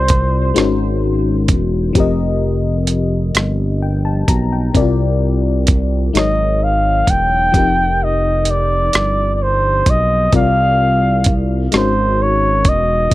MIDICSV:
0, 0, Header, 1, 5, 480
1, 0, Start_track
1, 0, Tempo, 930233
1, 1009, Time_signature, 6, 3, 24, 8
1, 6781, End_track
2, 0, Start_track
2, 0, Title_t, "Flugelhorn"
2, 0, Program_c, 0, 56
2, 0, Note_on_c, 0, 72, 85
2, 515, Note_off_c, 0, 72, 0
2, 3182, Note_on_c, 0, 75, 83
2, 3424, Note_on_c, 0, 77, 83
2, 3432, Note_off_c, 0, 75, 0
2, 3664, Note_on_c, 0, 79, 100
2, 3672, Note_off_c, 0, 77, 0
2, 4148, Note_on_c, 0, 75, 84
2, 4155, Note_off_c, 0, 79, 0
2, 4387, Note_on_c, 0, 74, 79
2, 4395, Note_off_c, 0, 75, 0
2, 4825, Note_off_c, 0, 74, 0
2, 4825, Note_on_c, 0, 74, 58
2, 4863, Note_on_c, 0, 72, 80
2, 4871, Note_off_c, 0, 74, 0
2, 5107, Note_on_c, 0, 75, 86
2, 5115, Note_off_c, 0, 72, 0
2, 5338, Note_off_c, 0, 75, 0
2, 5347, Note_on_c, 0, 77, 98
2, 5898, Note_off_c, 0, 77, 0
2, 6070, Note_on_c, 0, 72, 82
2, 6306, Note_on_c, 0, 73, 84
2, 6314, Note_off_c, 0, 72, 0
2, 6546, Note_on_c, 0, 75, 74
2, 6554, Note_off_c, 0, 73, 0
2, 6781, Note_off_c, 0, 75, 0
2, 6781, End_track
3, 0, Start_track
3, 0, Title_t, "FM electric piano"
3, 0, Program_c, 1, 5
3, 0, Control_c, 1, 64, 127
3, 0, Note_on_c, 1, 48, 52
3, 0, Note_on_c, 1, 60, 50
3, 0, Note_on_c, 1, 65, 49
3, 0, Note_on_c, 1, 70, 46
3, 0, Note_on_c, 1, 74, 64
3, 280, Note_on_c, 1, 56, 67
3, 286, Note_on_c, 1, 63, 60
3, 288, Note_off_c, 1, 48, 0
3, 288, Note_off_c, 1, 70, 0
3, 290, Note_off_c, 1, 60, 0
3, 290, Note_on_c, 1, 66, 60
3, 292, Note_off_c, 1, 65, 0
3, 294, Note_on_c, 1, 70, 55
3, 296, Control_c, 1, 64, 0
3, 299, Note_on_c, 1, 61, 75
3, 313, Note_off_c, 1, 74, 0
3, 373, Control_c, 1, 64, 127
3, 997, Note_on_c, 1, 53, 66
3, 1004, Note_on_c, 1, 60, 60
3, 1005, Note_off_c, 1, 56, 0
3, 1008, Note_off_c, 1, 63, 0
3, 1009, Note_off_c, 1, 66, 0
3, 1011, Note_off_c, 1, 70, 0
3, 1013, Note_on_c, 1, 67, 64
3, 1014, Note_off_c, 1, 61, 0
3, 1016, Control_c, 1, 64, 0
3, 1023, Note_on_c, 1, 70, 59
3, 1032, Note_on_c, 1, 75, 74
3, 1092, Control_c, 1, 64, 127
3, 1973, Note_on_c, 1, 79, 54
3, 2085, Note_off_c, 1, 79, 0
3, 2090, Note_on_c, 1, 81, 62
3, 2203, Note_off_c, 1, 81, 0
3, 2210, Note_on_c, 1, 82, 64
3, 2323, Note_off_c, 1, 82, 0
3, 2335, Note_on_c, 1, 79, 53
3, 2422, Note_off_c, 1, 53, 0
3, 2426, Note_off_c, 1, 60, 0
3, 2430, Note_off_c, 1, 67, 0
3, 2435, Note_off_c, 1, 70, 0
3, 2440, Note_off_c, 1, 75, 0
3, 2444, Note_on_c, 1, 48, 70
3, 2448, Note_on_c, 1, 60, 57
3, 2452, Note_on_c, 1, 64, 49
3, 2455, Control_c, 1, 64, 0
3, 2458, Note_on_c, 1, 70, 65
3, 2461, Note_on_c, 1, 74, 73
3, 2484, Note_off_c, 1, 64, 0
3, 2486, Note_on_c, 1, 65, 54
3, 2534, Control_c, 1, 64, 127
3, 2560, Note_off_c, 1, 79, 0
3, 3164, Note_on_c, 1, 56, 55
3, 3166, Note_off_c, 1, 48, 0
3, 3168, Note_off_c, 1, 60, 0
3, 3168, Note_on_c, 1, 63, 53
3, 3172, Note_off_c, 1, 70, 0
3, 3174, Note_on_c, 1, 54, 45
3, 3175, Note_off_c, 1, 74, 0
3, 3175, Control_c, 1, 64, 0
3, 3178, Note_on_c, 1, 70, 50
3, 3183, Note_on_c, 1, 73, 59
3, 3187, Note_off_c, 1, 65, 0
3, 3257, Control_c, 1, 64, 127
3, 3879, Note_on_c, 1, 53, 57
3, 3887, Note_off_c, 1, 56, 0
3, 3889, Note_off_c, 1, 63, 0
3, 3889, Note_on_c, 1, 60, 51
3, 3891, Note_off_c, 1, 54, 0
3, 3893, Note_off_c, 1, 70, 0
3, 3896, Note_off_c, 1, 73, 0
3, 3896, Control_c, 1, 64, 0
3, 3897, Note_on_c, 1, 67, 48
3, 3907, Note_on_c, 1, 70, 47
3, 3915, Note_on_c, 1, 63, 59
3, 3999, Control_c, 1, 64, 127
3, 5303, Note_off_c, 1, 53, 0
3, 5308, Note_off_c, 1, 60, 0
3, 5312, Note_off_c, 1, 67, 0
3, 5317, Note_off_c, 1, 70, 0
3, 5321, Note_off_c, 1, 63, 0
3, 5326, Note_on_c, 1, 48, 53
3, 5330, Note_on_c, 1, 60, 49
3, 5334, Note_on_c, 1, 65, 49
3, 5335, Control_c, 1, 64, 0
3, 5339, Note_on_c, 1, 70, 53
3, 5344, Note_on_c, 1, 74, 59
3, 5413, Control_c, 1, 64, 127
3, 6045, Note_on_c, 1, 56, 52
3, 6048, Note_off_c, 1, 48, 0
3, 6049, Note_off_c, 1, 60, 0
3, 6051, Note_off_c, 1, 65, 0
3, 6051, Note_on_c, 1, 63, 50
3, 6054, Note_off_c, 1, 70, 0
3, 6055, Note_on_c, 1, 66, 53
3, 6056, Note_off_c, 1, 74, 0
3, 6056, Control_c, 1, 64, 0
3, 6060, Note_on_c, 1, 70, 54
3, 6064, Note_on_c, 1, 61, 62
3, 6135, Control_c, 1, 64, 127
3, 6759, Note_on_c, 1, 53, 54
3, 6767, Note_off_c, 1, 56, 0
3, 6770, Note_off_c, 1, 63, 0
3, 6772, Note_off_c, 1, 66, 0
3, 6774, Note_off_c, 1, 70, 0
3, 6776, Note_off_c, 1, 61, 0
3, 6776, Control_c, 1, 64, 0
3, 6781, Note_off_c, 1, 53, 0
3, 6781, End_track
4, 0, Start_track
4, 0, Title_t, "Analog synth bass"
4, 0, Program_c, 2, 38
4, 0, Note_on_c, 2, 36, 98
4, 270, Note_off_c, 2, 36, 0
4, 293, Note_on_c, 2, 32, 93
4, 772, Note_on_c, 2, 28, 92
4, 779, Note_off_c, 2, 32, 0
4, 990, Note_off_c, 2, 28, 0
4, 1013, Note_on_c, 2, 29, 94
4, 1710, Note_off_c, 2, 29, 0
4, 1729, Note_on_c, 2, 31, 101
4, 2188, Note_off_c, 2, 31, 0
4, 2213, Note_on_c, 2, 35, 88
4, 2430, Note_off_c, 2, 35, 0
4, 2453, Note_on_c, 2, 36, 91
4, 3150, Note_off_c, 2, 36, 0
4, 3171, Note_on_c, 2, 32, 94
4, 3629, Note_off_c, 2, 32, 0
4, 3654, Note_on_c, 2, 28, 84
4, 3871, Note_off_c, 2, 28, 0
4, 3894, Note_on_c, 2, 29, 94
4, 4591, Note_off_c, 2, 29, 0
4, 4615, Note_on_c, 2, 31, 88
4, 5071, Note_off_c, 2, 31, 0
4, 5093, Note_on_c, 2, 35, 85
4, 5310, Note_off_c, 2, 35, 0
4, 5332, Note_on_c, 2, 36, 92
4, 6030, Note_off_c, 2, 36, 0
4, 6055, Note_on_c, 2, 32, 92
4, 6531, Note_on_c, 2, 28, 79
4, 6539, Note_off_c, 2, 32, 0
4, 6749, Note_off_c, 2, 28, 0
4, 6781, End_track
5, 0, Start_track
5, 0, Title_t, "Drums"
5, 43, Note_on_c, 9, 42, 64
5, 52, Note_on_c, 9, 36, 77
5, 95, Note_off_c, 9, 42, 0
5, 103, Note_off_c, 9, 36, 0
5, 288, Note_on_c, 9, 42, 59
5, 299, Note_on_c, 9, 37, 91
5, 340, Note_off_c, 9, 42, 0
5, 351, Note_off_c, 9, 37, 0
5, 765, Note_on_c, 9, 42, 55
5, 767, Note_on_c, 9, 36, 73
5, 817, Note_off_c, 9, 42, 0
5, 819, Note_off_c, 9, 36, 0
5, 1007, Note_on_c, 9, 36, 92
5, 1008, Note_on_c, 9, 42, 54
5, 1059, Note_off_c, 9, 36, 0
5, 1059, Note_off_c, 9, 42, 0
5, 1482, Note_on_c, 9, 42, 70
5, 1533, Note_off_c, 9, 42, 0
5, 1727, Note_on_c, 9, 42, 62
5, 1738, Note_on_c, 9, 37, 85
5, 1779, Note_off_c, 9, 42, 0
5, 1790, Note_off_c, 9, 37, 0
5, 2208, Note_on_c, 9, 36, 71
5, 2210, Note_on_c, 9, 42, 63
5, 2260, Note_off_c, 9, 36, 0
5, 2261, Note_off_c, 9, 42, 0
5, 2449, Note_on_c, 9, 36, 96
5, 2451, Note_on_c, 9, 42, 54
5, 2501, Note_off_c, 9, 36, 0
5, 2503, Note_off_c, 9, 42, 0
5, 2925, Note_on_c, 9, 42, 69
5, 2932, Note_on_c, 9, 36, 83
5, 2976, Note_off_c, 9, 42, 0
5, 2984, Note_off_c, 9, 36, 0
5, 3174, Note_on_c, 9, 42, 61
5, 3184, Note_on_c, 9, 37, 84
5, 3225, Note_off_c, 9, 42, 0
5, 3236, Note_off_c, 9, 37, 0
5, 3650, Note_on_c, 9, 36, 75
5, 3651, Note_on_c, 9, 42, 63
5, 3702, Note_off_c, 9, 36, 0
5, 3703, Note_off_c, 9, 42, 0
5, 3890, Note_on_c, 9, 36, 95
5, 3892, Note_on_c, 9, 42, 56
5, 3942, Note_off_c, 9, 36, 0
5, 3944, Note_off_c, 9, 42, 0
5, 4362, Note_on_c, 9, 42, 63
5, 4413, Note_off_c, 9, 42, 0
5, 4609, Note_on_c, 9, 42, 64
5, 4620, Note_on_c, 9, 37, 84
5, 4660, Note_off_c, 9, 42, 0
5, 4671, Note_off_c, 9, 37, 0
5, 5088, Note_on_c, 9, 42, 62
5, 5089, Note_on_c, 9, 36, 73
5, 5140, Note_off_c, 9, 42, 0
5, 5141, Note_off_c, 9, 36, 0
5, 5327, Note_on_c, 9, 42, 52
5, 5329, Note_on_c, 9, 36, 96
5, 5379, Note_off_c, 9, 42, 0
5, 5380, Note_off_c, 9, 36, 0
5, 5801, Note_on_c, 9, 42, 72
5, 5812, Note_on_c, 9, 36, 87
5, 5853, Note_off_c, 9, 42, 0
5, 5864, Note_off_c, 9, 36, 0
5, 6047, Note_on_c, 9, 42, 61
5, 6058, Note_on_c, 9, 37, 94
5, 6099, Note_off_c, 9, 42, 0
5, 6109, Note_off_c, 9, 37, 0
5, 6525, Note_on_c, 9, 42, 58
5, 6528, Note_on_c, 9, 36, 78
5, 6577, Note_off_c, 9, 42, 0
5, 6579, Note_off_c, 9, 36, 0
5, 6781, End_track
0, 0, End_of_file